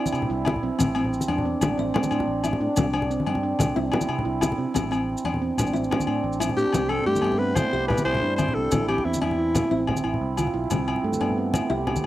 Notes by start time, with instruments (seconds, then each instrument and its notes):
Already playing: handpan E4
0.06 high conga, maracas
0.13 fingered electric bass C3, low conga, low agogo, maracas
0.22 low conga
0.29 fingered electric bass C2, handpan E4
0.45 steel-string acoustic guitar E4, high conga, low agogo
0.56 low conga
0.63 fingered electric bass B1, handpan C4
0.79 fingered electric bass A1, steel-string acoustic guitar C4, high conga, low conga, low agogo, maracas
0.95 steel-string acoustic guitar C4, handpan C4, low agogo
1.04 low conga
1.13 maracas
1.21 high conga, maracas
1.28 fingered electric bass E2, steel-string acoustic guitar D4, handpan D4, low agogo
1.38 low conga
1.45 handpan C4
1.61 fingered electric bass A1, handpan D4, high conga, low conga, low agogo, maracas
1.77 fingered electric bass A1, handpan C4, steel-string acoustic guitar E4
1.88 low conga
1.94 handpan C4, low conga, low agogo
2.03 high conga, maracas
2.11 fingered electric bass A2, handpan D4, low conga, low agogo, maracas
2.20 low conga
2.27 fingered electric bass A1
2.44 handpan C4, steel-string acoustic guitar E4, low agogo, maracas
2.53 low conga
2.60 fingered electric bass A2, handpan D4
2.76 fingered electric bass C2, steel-string acoustic guitar C4, high conga, low conga, low agogo, maracas
2.93 steel-string acoustic guitar C4, handpan D4, low agogo
3.02 low conga
3.10 handpan C4, maracas
3.20 high conga
3.26 fingered electric bass G2, steel-string acoustic guitar D4, low agogo
3.35 low conga
3.43 handpan D4
3.59 fingered electric bass C2, high conga, low conga, low agogo, maracas
3.76 fingered electric bass C2, handpan C4, steel-string acoustic guitar E4
3.86 low conga
3.92 handpan E4, low conga, low agogo
4.01 high conga, maracas
4.08 fingered electric bass C3, low conga, low agogo
4.19 low conga
4.25 fingered electric bass C2, handpan E4
4.41 steel-string acoustic guitar E4, high conga, low agogo, maracas
4.52 low conga
4.58 fingered electric bass C3, handpan C4
4.74 fingered electric bass A1, steel-string acoustic guitar C4, high conga, low conga, low agogo, maracas
4.91 steel-string acoustic guitar C4, handpan C4, low agogo, maracas
5.09 low conga
5.17 maracas
5.24 fingered electric bass E2, steel-string acoustic guitar D4, handpan D4, low agogo
5.34 low conga
5.42 handpan C4, low conga
5.57 fingered electric bass A1, handpan D4, low conga, low agogo, maracas
5.67 maracas
5.73 fingered electric bass A1, handpan C4, steel-string acoustic guitar E4, low conga, maracas
5.84 maracas
5.91 handpan C4, low conga, low agogo
6.00 high conga, low conga, maracas
6.07 fingered electric bass A2, handpan D4, low conga, low agogo
6.24 fingered electric bass A1
6.33 low conga, maracas
6.40 handpan C4, steel-string acoustic guitar E4, low agogo, maracas
6.49 low conga
6.57 fingered electric bass A2, handpan D4, alto saxophone G4, maracas
6.67 low conga
6.73 fingered electric bass C2, handpan C4, steel-string acoustic guitar C4, high conga, low conga, low agogo, maracas
6.89 steel-string acoustic guitar C4, alto saxophone A4, low agogo
6.99 low conga
7.06 fingered electric bass G2, handpan A3, alto saxophone G4, low conga
7.15 high conga, maracas
7.22 fingered electric bass G2, handpan B3, steel-string acoustic guitar D4, low agogo
7.32 low conga
7.38 handpan C4, alto saxophone B4
7.49 low conga
7.55 handpan E4, alto saxophone C5, high conga, low conga, low agogo, maracas
7.73 fingered electric bass C2, steel-string acoustic guitar E4, handpan G4, low conga
7.88 alto saxophone B4, low conga, low agogo
7.98 high conga, low conga, maracas
8.05 fingered electric bass C2, handpan E4, alto saxophone C5, low agogo
8.15 low conga
8.21 fingered electric bass G2, handpan D4
8.36 handpan C4, steel-string acoustic guitar E4, alto saxophone C5, high conga, low agogo, maracas
8.48 low conga
8.54 fingered electric bass C2, alto saxophone A4
8.65 low conga
8.72 fingered electric bass A1, steel-string acoustic guitar C4, handpan E4, high conga, low conga, low agogo, maracas
8.88 steel-string acoustic guitar C4, alto saxophone G4, low agogo
8.98 low conga
9.04 fingered electric bass E2, handpan C4, alto saxophone E4, low conga
9.14 high conga, maracas
9.21 fingered electric bass E2, steel-string acoustic guitar D4, alto saxophone E4, low agogo
9.31 low conga
9.39 handpan E4
9.48 low conga
9.55 high conga, low conga, low agogo, maracas
9.71 fingered electric bass A1, handpan C4, steel-string acoustic guitar E4, low conga
9.87 low conga, low agogo
9.96 high conga, low conga, maracas
10.04 fingered electric bass A1, handpan E4, low agogo
10.14 low conga
10.21 fingered electric bass C2
10.37 handpan F4, high conga, low agogo, maracas
10.47 low conga
10.54 fingered electric bass B1, handpan E4
10.64 low conga
10.70 fingered electric bass C2, steel-string acoustic guitar C4, handpan C4, high conga, low conga, low agogo, maracas
10.88 steel-string acoustic guitar C4, low agogo
10.96 low conga
11.03 fingered electric bass G2, handpan A3, low conga
11.12 high conga, maracas
11.20 fingered electric bass G2, handpan B3, steel-string acoustic guitar D4, low agogo
11.29 low conga
11.38 handpan C4
11.46 low conga
11.54 handpan E4, high conga, low conga, low agogo, maracas
11.70 fingered electric bass C2, steel-string acoustic guitar E4, handpan G4, low conga
11.87 low conga, low agogo
11.96 high conga, low conga, maracas